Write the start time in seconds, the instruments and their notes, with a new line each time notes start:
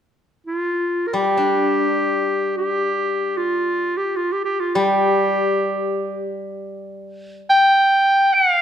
0.47 clarinet F4
1.07 clarinet A#4
1.13 guzheng G3, clarinet G4
1.37 guzheng D4
2.57 clarinet G4
3.37 clarinet F4
3.97 clarinet G4
4.16 clarinet F4
4.32 clarinet G4
4.45 clarinet G4
4.60 clarinet F4
4.75 guzheng G3, clarinet G4
7.50 clarinet G5
8.34 clarinet F#5
8.53 clarinet F5